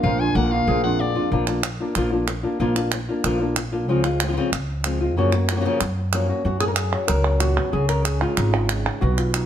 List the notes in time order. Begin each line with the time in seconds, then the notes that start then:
Already playing: A#3 D4 F4
0.03 A#1 A#2 F3 A#3 D4 F4 A#4 F5
0.20 A#3 D4 F4 G#5
0.35 A#1 A#3 A#4 F#5, muted nylon-string guitar stroke
0.52 A#3 D4 F4 F5
0.67 A#1 F3 A#3 D4 F4 G#4
0.84 F2 A#3 D4 F4 F#5
1.00 D4 D5, muted nylon-string guitar stroke
1.16 A#3 D4 F4
1.32 A#1 F3 A#3 D4 F4
1.47 A#3 D4 F4, clap
1.63 muted nylon-string guitar stroke, clap
1.80 A#3 D4 F4
1.95 A#1 F3 A#3 D4 F4, clap
2.12 A#3 D4 F4
2.27 muted nylon-string guitar stroke, clap
2.43 A#3 D4 F4
2.60 A#1 F3 A#3 D4 F4
2.76 A#3 D4 F4, clap
2.92 muted nylon-string guitar stroke, clap
3.09 A#3 D4 F4
3.24 A#1 F3 A#3 D4 F4, clap
3.40 A#3 D4 F4
3.56 muted nylon-string guitar stroke, clap
3.72 A#3 D4 F4
3.88 C#2 C#3 F3 G#3 C4 F4
4.04 G#3 C4 F4, clap
4.20 F3 G#3 C4, clap
4.25 F3 G#3 C4 F4
4.29 F3 G#3 C4 F4
4.33 C#3 F3 G#3 F4
4.38 C4 F4
4.52 C#2, muted nylon-string guitar stroke, clap
4.84 F3 G#3 C4 F4, clap
5.01 G#3 C4 F4
5.16 F#2 C#3 F3 A#3 C#4 F#4
5.32 A#3 F#4, clap
5.49 F3 A#3 C#4 F#4, clap
5.56 F3 A#3 C#4 F#4
5.60 F3 A#3 C#4 F#4
5.65 C#3 F3 A#3 C#4 F#4
5.81 F#2, muted nylon-string guitar stroke, clap
6.13 F3 A#3 C#4 F#4, clap
6.29 A#3 C#4 F#4
6.45 F#2 F#4
6.60 G#4, clap
6.68 A#4
6.74 G#4, clap
6.94 F#3
7.08 C#2 A#4, clap
7.24 C#4, clap
7.40 A#2 F#4, clap
7.57 B2, clap
7.72 C#2 C#3 G#4
7.89 A#4, clap
8.05 G#4, clap
8.21 G#3 F4, clap
8.37 G#1 D#4, clap
8.54 G#3, clap
8.69 G#3, clap
8.86 clap
9.01 B1 B2 F#4
9.17 F4, clap
9.34 D#4, clap